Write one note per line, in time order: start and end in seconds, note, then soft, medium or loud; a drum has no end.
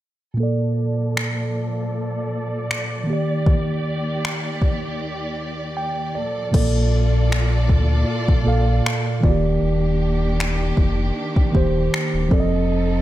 0.34 3.02 A#2 medium
0.34 3.03 A#3 medium
0.39 3.06 A#2 medium
0.39 3.06 F3 medium
0.39 3.05 A4 medium
0.39 6.50 D5 medium
0.43 3.06 D5 medium
1.17 finger snap loud
2.71 finger snap loud
3.04 6.12 D#2 medium
3.04 6.10 D#3 medium
3.04 6.12 D#3 medium
3.04 6.11 A#3 medium
3.08 6.13 G4 medium
3.13 6.14 D5 medium
3.46 kick loud
4.25 finger snap loud
4.62 kick medium
5.77 6.13 G5 medium
6.15 6.54 A#2 medium
6.15 6.54 F3 medium
6.15 6.53 A4 medium
6.15 6.51 D5 medium
6.52 7.71 A#1 loud
6.52 7.92 A#2 medium
6.52 7.92 A#3 medium
6.52 9.21 A#3 medium
6.52 9.21 F4 medium
6.52 9.21 A4 medium
6.52 7.93 A4 medium
6.52 9.21 D5 medium
6.52 kick loud
6.52 crash medium
6.56 7.94 D5 medium
7.32 finger snap loud
7.69 8.05 D2 medium
7.69 kick medium
8.28 kick medium
8.44 8.82 A#1 medium
8.44 9.22 A#2 medium
8.44 9.21 A#3 medium
8.44 9.24 A4 medium
8.48 9.24 F5 medium
8.86 finger snap loud
9.21 9.59 D#1 loud
9.21 10.61 D#3 medium
9.21 12.28 D#3 medium
9.21 10.62 A#3 medium
9.21 12.28 A#3 medium
9.21 12.28 D4 medium
9.21 9.30 F4 medium
9.21 12.28 G4 medium
9.21 kick loud
9.25 10.63 D5 medium
9.30 10.66 G4 medium
9.62 10.73 D#1 medium
10.40 finger snap loud
10.77 11.12 F1 medium
10.77 kick medium
11.36 kick medium
11.52 11.90 D#1 medium
11.52 12.30 D#3 medium
11.52 12.31 A#3 medium
11.52 12.31 G4 medium
11.52 kick medium
11.56 12.32 C5 medium
11.94 finger snap loud
12.14 12.30 D1 medium
12.29 13.02 F1 loud
12.29 13.02 F3 medium
12.29 13.02 C4 medium
12.29 13.02 D#4 medium
12.29 13.02 A4 medium
12.29 kick loud
12.34 12.39 D5 medium
12.40 13.02 D#5 medium